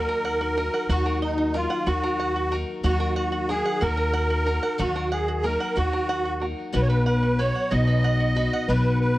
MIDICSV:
0, 0, Header, 1, 5, 480
1, 0, Start_track
1, 0, Key_signature, -6, "minor"
1, 0, Tempo, 648999
1, 664, Time_signature, 6, 3, 24, 8
1, 6792, End_track
2, 0, Start_track
2, 0, Title_t, "Accordion"
2, 0, Program_c, 0, 21
2, 0, Note_on_c, 0, 70, 103
2, 660, Note_on_c, 0, 66, 90
2, 682, Note_off_c, 0, 70, 0
2, 885, Note_off_c, 0, 66, 0
2, 908, Note_on_c, 0, 63, 82
2, 1145, Note_on_c, 0, 65, 92
2, 1153, Note_off_c, 0, 63, 0
2, 1383, Note_on_c, 0, 66, 102
2, 1392, Note_off_c, 0, 65, 0
2, 1893, Note_off_c, 0, 66, 0
2, 2107, Note_on_c, 0, 66, 95
2, 2327, Note_off_c, 0, 66, 0
2, 2338, Note_on_c, 0, 66, 85
2, 2586, Note_on_c, 0, 68, 102
2, 2588, Note_off_c, 0, 66, 0
2, 2824, Note_on_c, 0, 70, 114
2, 2832, Note_off_c, 0, 68, 0
2, 3548, Note_on_c, 0, 66, 90
2, 3565, Note_off_c, 0, 70, 0
2, 3769, Note_off_c, 0, 66, 0
2, 3784, Note_on_c, 0, 68, 90
2, 4025, Note_on_c, 0, 70, 99
2, 4031, Note_off_c, 0, 68, 0
2, 4263, Note_on_c, 0, 66, 105
2, 4271, Note_off_c, 0, 70, 0
2, 4774, Note_off_c, 0, 66, 0
2, 4996, Note_on_c, 0, 71, 104
2, 5042, Note_off_c, 0, 71, 0
2, 5043, Note_on_c, 0, 73, 82
2, 5090, Note_off_c, 0, 73, 0
2, 5094, Note_on_c, 0, 71, 92
2, 5208, Note_off_c, 0, 71, 0
2, 5220, Note_on_c, 0, 71, 101
2, 5459, Note_on_c, 0, 73, 108
2, 5469, Note_off_c, 0, 71, 0
2, 5696, Note_on_c, 0, 75, 108
2, 5709, Note_off_c, 0, 73, 0
2, 6419, Note_on_c, 0, 71, 101
2, 6442, Note_off_c, 0, 75, 0
2, 6649, Note_off_c, 0, 71, 0
2, 6660, Note_on_c, 0, 71, 102
2, 6792, Note_off_c, 0, 71, 0
2, 6792, End_track
3, 0, Start_track
3, 0, Title_t, "Five-string banjo"
3, 0, Program_c, 1, 105
3, 0, Note_on_c, 1, 66, 79
3, 0, Note_on_c, 1, 78, 83
3, 64, Note_on_c, 1, 70, 73
3, 174, Note_off_c, 1, 78, 0
3, 183, Note_on_c, 1, 78, 86
3, 294, Note_off_c, 1, 66, 0
3, 303, Note_on_c, 1, 66, 70
3, 417, Note_off_c, 1, 70, 0
3, 426, Note_on_c, 1, 70, 80
3, 537, Note_off_c, 1, 78, 0
3, 546, Note_on_c, 1, 78, 81
3, 654, Note_off_c, 1, 66, 0
3, 663, Note_on_c, 1, 66, 94
3, 773, Note_off_c, 1, 70, 0
3, 782, Note_on_c, 1, 70, 79
3, 904, Note_on_c, 1, 75, 85
3, 1017, Note_off_c, 1, 66, 0
3, 1020, Note_on_c, 1, 63, 72
3, 1025, Note_off_c, 1, 78, 0
3, 1132, Note_off_c, 1, 70, 0
3, 1141, Note_on_c, 1, 70, 89
3, 1259, Note_on_c, 1, 78, 85
3, 1380, Note_off_c, 1, 63, 0
3, 1383, Note_on_c, 1, 66, 87
3, 1384, Note_off_c, 1, 75, 0
3, 1497, Note_off_c, 1, 70, 0
3, 1506, Note_on_c, 1, 70, 85
3, 1615, Note_off_c, 1, 78, 0
3, 1624, Note_on_c, 1, 78, 83
3, 1736, Note_off_c, 1, 66, 0
3, 1744, Note_on_c, 1, 66, 72
3, 1855, Note_off_c, 1, 70, 0
3, 1864, Note_on_c, 1, 70, 82
3, 2095, Note_off_c, 1, 66, 0
3, 2104, Note_off_c, 1, 78, 0
3, 2104, Note_on_c, 1, 66, 100
3, 2212, Note_off_c, 1, 70, 0
3, 2220, Note_on_c, 1, 70, 77
3, 2340, Note_on_c, 1, 78, 90
3, 2448, Note_off_c, 1, 66, 0
3, 2457, Note_on_c, 1, 66, 79
3, 2573, Note_off_c, 1, 70, 0
3, 2582, Note_on_c, 1, 70, 82
3, 2695, Note_off_c, 1, 78, 0
3, 2704, Note_on_c, 1, 78, 88
3, 2808, Note_off_c, 1, 66, 0
3, 2817, Note_on_c, 1, 66, 86
3, 2929, Note_off_c, 1, 70, 0
3, 2938, Note_on_c, 1, 70, 81
3, 3049, Note_off_c, 1, 78, 0
3, 3058, Note_on_c, 1, 78, 89
3, 3174, Note_off_c, 1, 66, 0
3, 3182, Note_on_c, 1, 66, 74
3, 3295, Note_off_c, 1, 70, 0
3, 3304, Note_on_c, 1, 70, 84
3, 3415, Note_off_c, 1, 78, 0
3, 3424, Note_on_c, 1, 78, 80
3, 3537, Note_off_c, 1, 66, 0
3, 3545, Note_on_c, 1, 66, 99
3, 3656, Note_off_c, 1, 70, 0
3, 3665, Note_on_c, 1, 70, 81
3, 3774, Note_off_c, 1, 78, 0
3, 3783, Note_on_c, 1, 78, 81
3, 3896, Note_off_c, 1, 66, 0
3, 3905, Note_on_c, 1, 66, 79
3, 4014, Note_off_c, 1, 70, 0
3, 4023, Note_on_c, 1, 70, 81
3, 4134, Note_off_c, 1, 78, 0
3, 4143, Note_on_c, 1, 78, 83
3, 4256, Note_off_c, 1, 66, 0
3, 4265, Note_on_c, 1, 66, 85
3, 4380, Note_off_c, 1, 70, 0
3, 4389, Note_on_c, 1, 70, 73
3, 4497, Note_off_c, 1, 78, 0
3, 4506, Note_on_c, 1, 78, 85
3, 4618, Note_off_c, 1, 66, 0
3, 4627, Note_on_c, 1, 66, 68
3, 4737, Note_off_c, 1, 70, 0
3, 4745, Note_on_c, 1, 70, 79
3, 4976, Note_off_c, 1, 66, 0
3, 4984, Note_off_c, 1, 70, 0
3, 4985, Note_off_c, 1, 78, 0
3, 4985, Note_on_c, 1, 66, 90
3, 5102, Note_on_c, 1, 71, 74
3, 5222, Note_on_c, 1, 78, 83
3, 5335, Note_off_c, 1, 66, 0
3, 5344, Note_on_c, 1, 66, 70
3, 5456, Note_off_c, 1, 71, 0
3, 5464, Note_on_c, 1, 71, 81
3, 5575, Note_off_c, 1, 78, 0
3, 5584, Note_on_c, 1, 78, 79
3, 5694, Note_off_c, 1, 66, 0
3, 5703, Note_on_c, 1, 66, 85
3, 5814, Note_off_c, 1, 71, 0
3, 5823, Note_on_c, 1, 71, 74
3, 5938, Note_off_c, 1, 78, 0
3, 5947, Note_on_c, 1, 78, 85
3, 6056, Note_off_c, 1, 66, 0
3, 6065, Note_on_c, 1, 66, 67
3, 6176, Note_off_c, 1, 71, 0
3, 6185, Note_on_c, 1, 71, 81
3, 6301, Note_off_c, 1, 78, 0
3, 6310, Note_on_c, 1, 78, 83
3, 6424, Note_off_c, 1, 66, 0
3, 6424, Note_off_c, 1, 71, 0
3, 6427, Note_off_c, 1, 78, 0
3, 6792, End_track
4, 0, Start_track
4, 0, Title_t, "Twelve-string acoustic guitar"
4, 0, Program_c, 2, 25
4, 0, Note_on_c, 2, 51, 64
4, 0, Note_on_c, 2, 54, 58
4, 0, Note_on_c, 2, 58, 70
4, 0, Note_on_c, 2, 63, 66
4, 0, Note_on_c, 2, 66, 71
4, 418, Note_off_c, 2, 66, 0
4, 421, Note_on_c, 2, 66, 55
4, 425, Note_off_c, 2, 58, 0
4, 431, Note_off_c, 2, 63, 0
4, 434, Note_on_c, 2, 63, 54
4, 442, Note_on_c, 2, 58, 49
4, 662, Note_off_c, 2, 66, 0
4, 663, Note_off_c, 2, 51, 0
4, 663, Note_off_c, 2, 58, 0
4, 665, Note_off_c, 2, 54, 0
4, 666, Note_off_c, 2, 63, 0
4, 666, Note_on_c, 2, 51, 83
4, 668, Note_on_c, 2, 54, 86
4, 672, Note_on_c, 2, 58, 92
4, 675, Note_on_c, 2, 63, 92
4, 676, Note_on_c, 2, 66, 96
4, 1136, Note_off_c, 2, 54, 0
4, 1139, Note_off_c, 2, 58, 0
4, 1139, Note_on_c, 2, 54, 67
4, 1148, Note_on_c, 2, 58, 70
4, 1152, Note_off_c, 2, 63, 0
4, 1155, Note_on_c, 2, 63, 62
4, 1375, Note_off_c, 2, 63, 0
4, 1376, Note_off_c, 2, 66, 0
4, 1378, Note_off_c, 2, 58, 0
4, 1379, Note_on_c, 2, 66, 69
4, 1381, Note_off_c, 2, 54, 0
4, 1384, Note_on_c, 2, 63, 69
4, 1387, Note_on_c, 2, 58, 66
4, 1389, Note_on_c, 2, 54, 60
4, 1392, Note_off_c, 2, 51, 0
4, 1395, Note_on_c, 2, 51, 59
4, 1858, Note_off_c, 2, 66, 0
4, 1860, Note_on_c, 2, 66, 64
4, 1865, Note_off_c, 2, 58, 0
4, 1869, Note_off_c, 2, 63, 0
4, 1872, Note_on_c, 2, 63, 58
4, 1878, Note_on_c, 2, 58, 54
4, 2096, Note_off_c, 2, 51, 0
4, 2099, Note_off_c, 2, 54, 0
4, 2099, Note_on_c, 2, 51, 83
4, 2100, Note_off_c, 2, 58, 0
4, 2101, Note_off_c, 2, 63, 0
4, 2102, Note_off_c, 2, 66, 0
4, 2102, Note_on_c, 2, 54, 87
4, 2108, Note_on_c, 2, 58, 84
4, 2110, Note_on_c, 2, 63, 85
4, 2114, Note_on_c, 2, 66, 99
4, 2579, Note_off_c, 2, 54, 0
4, 2580, Note_off_c, 2, 58, 0
4, 2582, Note_on_c, 2, 54, 65
4, 2589, Note_on_c, 2, 58, 65
4, 2592, Note_off_c, 2, 63, 0
4, 2595, Note_on_c, 2, 63, 66
4, 2597, Note_off_c, 2, 66, 0
4, 2600, Note_on_c, 2, 66, 68
4, 2809, Note_off_c, 2, 66, 0
4, 2813, Note_off_c, 2, 63, 0
4, 2818, Note_off_c, 2, 58, 0
4, 2818, Note_on_c, 2, 66, 74
4, 2820, Note_off_c, 2, 54, 0
4, 2822, Note_on_c, 2, 63, 67
4, 2827, Note_on_c, 2, 58, 60
4, 2829, Note_off_c, 2, 51, 0
4, 2829, Note_on_c, 2, 54, 67
4, 2832, Note_on_c, 2, 51, 55
4, 3296, Note_off_c, 2, 66, 0
4, 3299, Note_on_c, 2, 66, 61
4, 3305, Note_off_c, 2, 58, 0
4, 3305, Note_off_c, 2, 63, 0
4, 3308, Note_off_c, 2, 51, 0
4, 3308, Note_on_c, 2, 63, 52
4, 3318, Note_on_c, 2, 58, 54
4, 3535, Note_off_c, 2, 58, 0
4, 3536, Note_on_c, 2, 51, 82
4, 3538, Note_off_c, 2, 54, 0
4, 3538, Note_off_c, 2, 63, 0
4, 3541, Note_off_c, 2, 66, 0
4, 3541, Note_on_c, 2, 54, 97
4, 3544, Note_on_c, 2, 58, 84
4, 3546, Note_on_c, 2, 63, 90
4, 3550, Note_on_c, 2, 66, 92
4, 4013, Note_off_c, 2, 54, 0
4, 4015, Note_off_c, 2, 58, 0
4, 4016, Note_on_c, 2, 54, 62
4, 4020, Note_off_c, 2, 51, 0
4, 4024, Note_on_c, 2, 58, 58
4, 4029, Note_off_c, 2, 63, 0
4, 4032, Note_on_c, 2, 63, 68
4, 4034, Note_off_c, 2, 66, 0
4, 4037, Note_on_c, 2, 66, 66
4, 4247, Note_off_c, 2, 66, 0
4, 4252, Note_off_c, 2, 63, 0
4, 4256, Note_off_c, 2, 54, 0
4, 4256, Note_on_c, 2, 66, 71
4, 4258, Note_off_c, 2, 58, 0
4, 4261, Note_on_c, 2, 63, 67
4, 4265, Note_on_c, 2, 54, 56
4, 4267, Note_on_c, 2, 58, 63
4, 4272, Note_on_c, 2, 51, 58
4, 4731, Note_off_c, 2, 66, 0
4, 4734, Note_on_c, 2, 66, 53
4, 4743, Note_off_c, 2, 63, 0
4, 4745, Note_off_c, 2, 58, 0
4, 4745, Note_on_c, 2, 63, 50
4, 4748, Note_off_c, 2, 51, 0
4, 4754, Note_on_c, 2, 58, 50
4, 4976, Note_on_c, 2, 47, 88
4, 4978, Note_off_c, 2, 54, 0
4, 4978, Note_off_c, 2, 63, 0
4, 4979, Note_off_c, 2, 66, 0
4, 4981, Note_off_c, 2, 58, 0
4, 4981, Note_on_c, 2, 54, 81
4, 4984, Note_on_c, 2, 59, 85
4, 4987, Note_on_c, 2, 63, 85
4, 4989, Note_on_c, 2, 66, 91
4, 5457, Note_off_c, 2, 54, 0
4, 5460, Note_off_c, 2, 47, 0
4, 5460, Note_on_c, 2, 54, 60
4, 5461, Note_off_c, 2, 59, 0
4, 5465, Note_off_c, 2, 63, 0
4, 5470, Note_on_c, 2, 59, 71
4, 5476, Note_on_c, 2, 63, 68
4, 5480, Note_off_c, 2, 66, 0
4, 5483, Note_on_c, 2, 66, 74
4, 5689, Note_off_c, 2, 66, 0
4, 5692, Note_off_c, 2, 63, 0
4, 5697, Note_off_c, 2, 59, 0
4, 5698, Note_on_c, 2, 66, 73
4, 5700, Note_off_c, 2, 54, 0
4, 5701, Note_on_c, 2, 63, 67
4, 5706, Note_on_c, 2, 59, 71
4, 5708, Note_on_c, 2, 54, 67
4, 5710, Note_on_c, 2, 47, 58
4, 6174, Note_off_c, 2, 66, 0
4, 6176, Note_on_c, 2, 66, 61
4, 6182, Note_off_c, 2, 63, 0
4, 6185, Note_off_c, 2, 59, 0
4, 6187, Note_off_c, 2, 47, 0
4, 6190, Note_on_c, 2, 63, 52
4, 6198, Note_on_c, 2, 59, 49
4, 6420, Note_off_c, 2, 66, 0
4, 6422, Note_off_c, 2, 59, 0
4, 6422, Note_on_c, 2, 47, 79
4, 6424, Note_off_c, 2, 54, 0
4, 6425, Note_off_c, 2, 63, 0
4, 6427, Note_on_c, 2, 54, 83
4, 6431, Note_on_c, 2, 59, 91
4, 6434, Note_on_c, 2, 63, 93
4, 6435, Note_on_c, 2, 66, 85
4, 6792, Note_off_c, 2, 47, 0
4, 6792, Note_off_c, 2, 54, 0
4, 6792, Note_off_c, 2, 59, 0
4, 6792, Note_off_c, 2, 63, 0
4, 6792, Note_off_c, 2, 66, 0
4, 6792, End_track
5, 0, Start_track
5, 0, Title_t, "Upright bass"
5, 0, Program_c, 3, 32
5, 0, Note_on_c, 3, 39, 93
5, 500, Note_off_c, 3, 39, 0
5, 661, Note_on_c, 3, 39, 103
5, 1222, Note_off_c, 3, 39, 0
5, 1382, Note_on_c, 3, 39, 104
5, 1942, Note_off_c, 3, 39, 0
5, 2102, Note_on_c, 3, 39, 94
5, 2662, Note_off_c, 3, 39, 0
5, 2827, Note_on_c, 3, 39, 106
5, 3385, Note_off_c, 3, 39, 0
5, 3547, Note_on_c, 3, 39, 101
5, 4105, Note_off_c, 3, 39, 0
5, 4268, Note_on_c, 3, 39, 96
5, 4826, Note_off_c, 3, 39, 0
5, 4991, Note_on_c, 3, 35, 101
5, 5548, Note_off_c, 3, 35, 0
5, 5708, Note_on_c, 3, 35, 105
5, 6266, Note_off_c, 3, 35, 0
5, 6422, Note_on_c, 3, 35, 97
5, 6792, Note_off_c, 3, 35, 0
5, 6792, End_track
0, 0, End_of_file